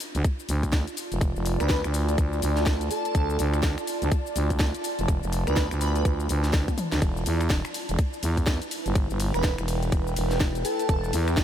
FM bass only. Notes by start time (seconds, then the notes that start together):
0.15 D2
0.49 D2
1.12 F1
1.36 F1
1.60 D2
1.84 D2
2.18 D2
2.42 D2
3.15 D2
3.39 D2
3.63 D2
4.02 D2
4.36 D2
4.99 F1
5.23 F1
5.47 D2
5.71 D2
6.05 D2
6.29 D2
6.54 D2
6.92 D2
7.02 E1
7.26 E2
7.50 E1
7.89 E1
8.23 E2
8.86 G1
9.10 G1
9.34 E1
9.58 E1
9.92 E1
10.16 E1
10.89 E1
11.13 E2
11.37 E1